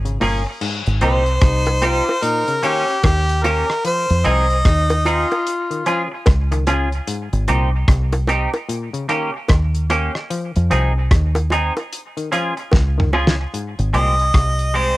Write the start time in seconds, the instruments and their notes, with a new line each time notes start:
Already playing: fingered electric bass G#1
0.05 clav C#3, closed hi-hat
0.20 fingered electric bass G1, clav A#2, clean electric guitar A#3 C#4 G#4, open hi-hat, low bongo
0.46 muted clean electric guitar stroke
0.61 clav G#2, crash
0.86 fingered electric bass G#1, closed hi-hat
1.01 fingered electric bass C2, clav A#2, clean electric guitar C4 D#4 G4, tenor saxophone C4, harmonica C5, closed hi-hat
1.26 closed hi-hat
1.41 fingered electric bass C2, tenor saxophone D#4, kick, cross-stick, closed hi-hat
1.66 closed hi-hat, high bongo
1.82 clean electric guitar C4 D#4 G4, tenor saxophone F4, closed hi-hat, high bongo, low bongo
2.09 high bongo
2.22 clav A#2, tenor saxophone D#4, harmonica A#4, closed hi-hat
2.48 clav C#3, closed hi-hat
2.63 clav D#3, clean electric guitar A#3 C#4 G4, tenor saxophone C#4, harmonica G4, closed hi-hat
2.88 muted clean electric guitar stroke, closed hi-hat
3.03 fingered electric bass D#2, harmonica G4, kick, cross-stick, closed hi-hat, high bongo
3.29 closed hi-hat
3.43 clean electric guitar A#3 C#4 G4, harmonica A#4, closed hi-hat, low bongo
3.70 cross-stick
3.85 clav F3, harmonica C5, closed hi-hat
4.10 fingered electric bass F2, closed hi-hat
4.24 fingered electric bass C2, clav F3, clean electric guitar C4 D#4 G#4, tenor saxophone C4, harmonica D#5, closed hi-hat
4.50 closed hi-hat
4.65 fingered electric bass D#2, tenor saxophone D#4, kick, cross-stick, closed hi-hat
4.90 closed hi-hat, high bongo
5.05 clean electric guitar C4 D#4 G#4, tenor saxophone F4, closed hi-hat, low bongo
5.31 closed hi-hat, high bongo
5.47 closed hi-hat
5.70 clav D#3, closed hi-hat
5.86 clav F3, clean electric guitar C#4 F4 G#4, tenor saxophone F4, closed hi-hat
6.12 muted clean electric guitar stroke
6.26 fingered electric bass C#2, kick, cross-stick, closed hi-hat, high bongo
6.51 clav D#3, muted clean electric guitar stroke, closed hi-hat
6.67 clav C#3, clean electric guitar C#4 F4 G#4, closed hi-hat, low bongo
6.92 closed hi-hat
7.07 clav G#2, closed hi-hat
7.33 fingered electric bass G#1, closed hi-hat
7.48 fingered electric bass C2, clav A#2, clean electric guitar C4 D#4 G4, closed hi-hat
7.88 fingered electric bass C2, kick, cross-stick, closed hi-hat
8.13 closed hi-hat, high bongo
8.28 clean electric guitar C4 D#4 G4, closed hi-hat, high bongo, low bongo
8.54 closed hi-hat, high bongo
8.69 clav A#2, closed hi-hat
8.94 clav C#3, closed hi-hat
9.09 clav D#3, clean electric guitar A#3 C#4 G4, closed hi-hat
9.34 muted clean electric guitar stroke
9.49 fingered electric bass D#2, kick, cross-stick, closed hi-hat, high bongo
9.75 closed hi-hat
9.90 clean electric guitar A#3 C#4 G4, closed hi-hat, low bongo
10.15 cross-stick
10.30 clav F3, closed hi-hat
10.56 fingered electric bass F2, closed hi-hat
10.70 fingered electric bass C2, clav F3, clean electric guitar C4 D#4 G#4, closed hi-hat
11.11 fingered electric bass D#2, kick, cross-stick, closed hi-hat
11.35 closed hi-hat, high bongo
11.50 clean electric guitar C4 D#4 G#4, closed hi-hat, low bongo
11.77 closed hi-hat, high bongo
11.93 closed hi-hat
12.17 clav D#3, closed hi-hat
12.32 clav F3, clean electric guitar C#4 F4 G#4, closed hi-hat
12.57 muted clean electric guitar stroke, closed hi-hat
12.72 fingered electric bass C#2, kick, snare, high bongo
12.98 clav D#3, mid tom
13.13 clav C#3, clean electric guitar C#4 F4 G#4, low bongo
13.27 snare
13.54 clav G#2, closed hi-hat
13.79 fingered electric bass G#1, closed hi-hat
13.93 fingered electric bass C2, clav A#2, clean electric guitar G#3 C4 G4, harmonica D#5, closed hi-hat
14.19 closed hi-hat
14.34 fingered electric bass C2, kick, cross-stick, closed hi-hat
14.59 closed hi-hat
14.74 clean electric guitar G#3 C4 G4, harmonica C5, open hi-hat